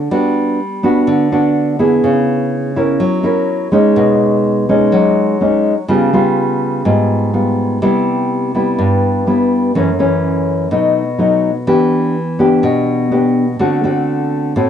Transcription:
nylon-string guitar
0.11 G3 B3 D4 F#4
0.83 B3 D4 F#4
1.07 D3
1.32 B3 D4 F#4
1.79 B3 E4 G#4
2.04 C#3
2.76 C#4 E4 A#4
3.00 F#3
3.23 C#4 E4 A#4
3.72 G#3 C#4 D#4
3.96 B2
4.69 G#3 C#4 D#4
4.92 F#3
5.41 G#3 C#4 D#4
5.88 C#3 G3 B3 F4
6.13 G3 B3 F4
6.85 G#2 G3 B3 F4
7.33 G3 B3 F4
7.82 C3 G3 B3 E4
8.55 G3 B3 E4
8.79 G2
9.27 G3 B3 E4
9.75 F#2 E3 A3 C#4
9.99 E3 A3 C#4
10.71 B2 F#3 A3 D#4
11.18 F#3 A3 D#4
11.67 E3 B3 D4 G4
12.39 B3 D4 G4
12.63 B2
13.11 B3 D4 G4
13.59 D3 A3 C4 F#4
13.84 A3 C4 F#4
14.56 A2 A3 C4 F#4

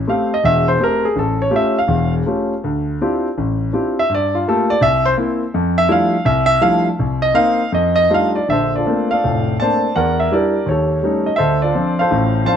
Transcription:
grand piano
0.07 A3 C4 G4 F5
0.34 D#5
0.44 E1 E2 E5
0.68 C5
0.80 A3 C4 G4 A#4
1.05 G#4
1.16 A1 A4
1.42 C#5
1.51 A3 C#4 F4 G4
1.56 E5
1.79 F5
1.87 E1 E2
2.26 A3 C#4 F4 G4
2.64 D2
3.01 C4 D4 E4 F4 G4
3.38 A1
3.73 C4 D4 E4 F4 G4
3.99 E5
4.09 G2
4.14 D5
4.35 F4
4.48 A3 A#3 F4 G4 A4
4.70 D5
4.81 C2 E5
5.05 C5
5.17 A#3 C4 E4
5.54 F2
5.78 E5
5.88 F3 G3 A3 D4 E4 F5
6.25 C2 E5
6.46 E5
6.61 F3 G3 A3 D4 E4 F5
6.99 C2
7.22 D#5
7.34 A#3 C4 D#4 F5
7.72 F2 D#5
7.96 D#5
8.10 G3 A3 D4 D#4 F4
8.14 F5
8.35 D5
8.48 A#1 D3 A4 E5
8.52 C5
8.76 F4 A4 D5
8.86 A3 A#3 C4 D4
9.11 A4 D5 F5
9.24 F1 A2
9.60 A3 A#3 C4 D4 C5 D5 A5
9.96 E2 A#4 D5 F#5
10.20 E5
10.32 G3 D4 E4 G4 A#4 D5
10.66 D#2 C#5
10.70 G4 A4
11.03 G3 A3 C#4 D#4
11.26 D#5
11.36 D2 A4 C5 E5
11.40 D3
11.62 F4 A4 D5
11.75 F3 C4 D4
11.99 A4 C5 F5
12.11 A1 A2
12.45 F3 C4 D4 C5 F5 A5

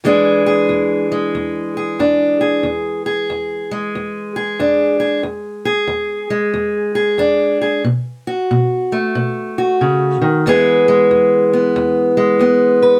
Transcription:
steel-string acoustic guitar
0.04 E2 E3 G#3 D4 G#4
0.46 G#4
0.69 E2
1.12 G#3
1.35 E2
1.77 G#4
1.99 E2 D4
2.41 G#4
2.63 E2
3.06 G#4
3.30 E2
3.71 G#3
3.95 E2
4.36 G#4
4.59 E2 D4
5.00 G#4
5.23 E2
5.65 G#4
5.87 E2
6.30 G#3
6.54 E2
6.95 G#4
7.18 E2 D4
7.61 G#4
7.84 B2
8.27 F#4
8.51 B2
8.92 A3
9.15 B2
9.58 F#4
9.81 C#3
10.21 D#3
10.46 E2 E3 G#3 B3 G#4
10.88 G#3
11.11 E2
11.53 B3
11.76 E2
12.17 G#3
12.39 E2 B3
12.82 B4

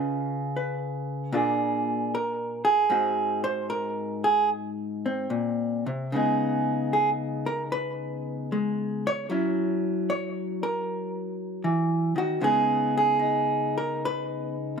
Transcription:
hollow-body jazz guitar
Already playing: C#3 C#4 F4 B4 D#5
0.56 B4
1.32 A#2 A#3 D4 F4 G#4
2.15 A#4
2.65 G#4
2.90 G#2 G#3 C4 F#4
3.44 C5
3.70 A#4
4.24 G#4
5.06 C4
5.30 A#2
5.86 C3
6.12 C#3 G#3 B3 D#4 G#4
6.93 G#4
7.46 A#4
7.72 B4
8.52 G#3
9.07 C#5
9.30 F#3 C#4 E4
10.10 C#5
10.63 A#4
11.64 E3
12.16 D#3 F#4
12.41 C#3 G#3 B3 D#4 G#4
12.97 G#4
13.19 D#4
13.78 A#4
14.05 B4

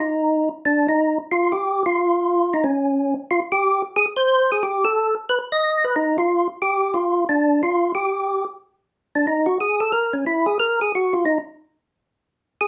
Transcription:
tonewheel organ
0.00 D#4
0.65 D4
0.89 D#4
1.32 F4
1.52 G4
1.86 F4
2.54 D#4
2.64 C#4
3.31 F4
3.52 G4
3.96 G#4
4.16 C5
4.52 G#4
4.63 G4
4.85 A4
5.29 B4
5.52 D#5
5.84 B4
5.96 D#4
6.18 F4
6.62 G4
6.94 F4
7.29 D4
7.63 F4
7.95 G4
9.15 D4
9.27 D#4
9.46 F#4
9.61 G#4
9.80 A4
9.92 A#4
10.13 C#4
10.26 E4
10.46 G#4
10.60 A#4
10.81 G#4
10.95 F#4
11.13 F4
11.25 D#4
12.61 G#4

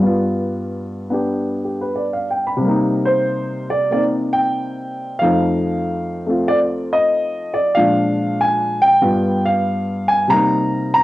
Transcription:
grand piano
Already playing: G2 F5
0.00 G3 B3
0.06 F4
1.10 B3 D4 G4
1.64 G4
1.81 B4
1.96 D5
2.13 F5
2.31 G5
2.47 B5
2.57 C3
2.61 G3 A#3
2.68 D#4
3.05 C5
3.70 D5
3.91 A#3 C4 D#4 D5
4.33 G5
5.19 F2 F3 A3 D#4 F5
6.26 A3 C4 F4
6.48 D5
6.93 D#5
7.54 D5
7.75 A#2 F3 G#3 D4 F5
8.41 G#5
8.82 G5
9.02 G2 G3 B3 F4
9.46 F5
10.08 G#5
10.28 C3 G3 A#3 A#5
10.32 D#4
10.94 A#5

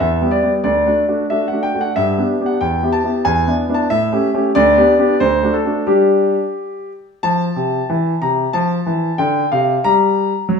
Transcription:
grand piano
0.00 E2 E5
0.21 G3 B3 G4
0.31 D5
0.43 G3 B3 G4
0.64 D2 D5
0.86 A3 D4 F#4
1.08 A3 D4 F#4
1.30 A3 D4 F#4 E5
1.48 F#5
1.52 A3 D4 F#4
1.63 G5
1.74 A3 D4 F#4
1.81 F#5
1.96 G2 E5
2.18 B3 D4 G4
2.40 B3 D4 G4
2.46 F#5
2.61 E2 G5
2.83 B3 E4 G4
2.92 A5
3.04 B3 E4 G4
3.25 E2 G#5
3.47 B3 D4 E4
3.69 B3 D4 E4
3.74 A5
3.90 A2 E5
4.12 A3 C#4 G4
4.34 A3 C#4 G4
4.55 D2 D5
4.77 B3 D4 G4
4.99 B3 D4 G4
5.20 D2 C5
5.43 A3 D4 F#4
5.54 A4
5.65 A3 D4 F#4
5.87 G3 D4 G4
7.23 F3 A5
7.56 C3
7.90 E3
8.22 C3 A#5
8.53 F3 A5
8.86 E3
9.18 D3 G5
9.52 C3 F5
9.84 G3 A#5
10.49 F#3

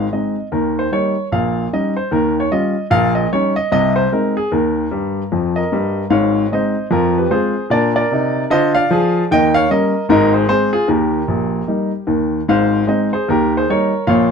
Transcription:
grand piano
0.13 G#3 C4 D#4 D#5
0.52 D#2 D#3 A#4
0.79 C5
0.92 G3 A#3 D#4 C#5
1.32 A#1 A#2 F5
1.73 G3 C#4 D#4 D#5
1.96 C5
2.11 D#2 D#3 A#4
2.40 C#5
2.52 G3 C#4 F4 D#5
2.90 A#1 A#2 F5
3.15 D#5
3.32 G3 C#4 D#4 C#5
3.56 D#5
3.72 C2 C3 D#5
3.96 C5
4.12 G#3 C4 D#4 A#4
4.37 G#4
4.52 D#2 D#3 A#4
4.91 G2 G3
5.32 F2 F3
5.56 A#4 D#5
5.72 G2 G3
6.10 G#1 G#2 C#5 F5
6.52 G#3 C4 D#4 C5 D#5
6.90 F2 F3 F4 A#4
7.18 G4 B4
7.30 G#3 C4 F4 G#4 C5
7.70 A#2 D4 A#4 D5
7.96 A#4 D5
8.11 C3 D#4
8.50 D3 F4 C5 D#5
8.75 D5 F5
8.91 F3 G#4
9.31 D#2 D#3 D#5 G5
9.54 C#5 F5
9.70 G3 A#3 C#4 A#4 D#5
10.09 G#1 G#2 D#4 A#4
10.34 G#4 C5
10.48 G#3 C4 G#4 C5
10.73 F4 G#4
10.88 D#2 D#3 G4 A#4
11.28 A#1 A#2
11.68 G3 A#3 D#4
12.07 D#2 D#3
12.48 G#1 G#2 C5 F5
12.87 G#3 C4 D#4 C5 D#5
13.13 G#4 C5
13.28 D#2 D#3 G4 A#4
13.57 G#4 C5
13.69 G3 A#3 D#4 A#4 C#5
14.07 A#1 A#2 C#5 F5

